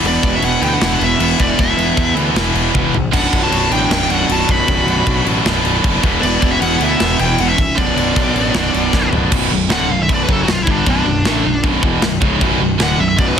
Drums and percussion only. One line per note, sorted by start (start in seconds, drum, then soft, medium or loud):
0.05 crash medium
0.23 kick medium
0.23 crash medium
0.42 crash medium
0.63 crash medium
0.81 snare loud
0.81 crash medium
1.01 crash medium
1.20 crash medium
1.40 kick medium
1.40 crash medium
1.59 kick loud
1.59 crash medium
1.79 crash medium
1.97 kick medium
1.97 crash medium
2.17 crash medium
2.36 snare loud
2.36 crash medium
2.55 crash medium
2.75 kick medium
2.75 high tom medium
2.94 floor tom medium
3.13 kick loud
3.13 crash loud
3.13 crash medium
3.33 kick medium
3.33 crash medium
3.52 crash medium
3.72 crash medium
3.91 snare loud
3.91 crash medium
4.10 crash medium
4.29 crash medium
4.49 kick medium
4.49 crash medium
4.68 kick loud
4.68 crash medium
4.88 crash medium
5.07 kick medium
5.07 crash medium
5.26 crash medium
5.46 snare loud
5.46 crash medium
5.65 crash medium
5.84 kick loud
5.84 crash medium
6.04 kick loud
6.04 crash medium
6.23 crash medium
6.42 kick medium
6.42 crash medium
6.62 crash medium
6.81 crash medium
7.00 snare loud
7.00 crash medium
7.19 crash medium
7.38 crash medium
7.58 kick medium
7.58 crash medium
7.78 kick loud
7.78 crash medium
7.97 crash medium
8.16 kick medium
8.16 crash medium
8.36 crash medium
8.54 snare loud
8.54 crash medium
8.74 crash medium
8.93 kick medium
8.93 snare medium
9.13 floor tom loud
9.32 kick loud
9.32 crash loud
9.32 crash medium
9.70 snare loud
9.70 crash medium
10.09 kick loud
10.09 crash medium
10.29 kick loud
10.48 snare loud
10.48 crash medium
10.67 kick loud
10.86 kick loud
10.86 crash medium
11.25 snare loud
11.25 crash medium
11.64 kick loud
11.64 crash medium
11.83 kick loud
12.02 snare loud
12.02 crash medium
12.22 kick loud
12.41 kick loud
12.41 crash medium
12.80 snare loud
12.80 crash medium
13.19 kick loud
13.19 crash medium